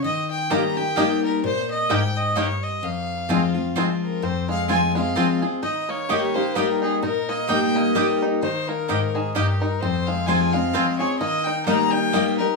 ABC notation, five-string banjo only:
X:1
M:3/4
L:1/8
Q:"Swing" 1/4=129
K:Ebmix
V:1 name="Five-string banjo"
z2 [B,E] z [B,E] z | z2 [B,E] z [B,E] z | z2 [A,CF] z [A,CF] z | C A, F A, C A |
E B, E B, E E | E B, E B, E E | E B, E E, E E | C A, F A, C A |
B, E E E B, E |]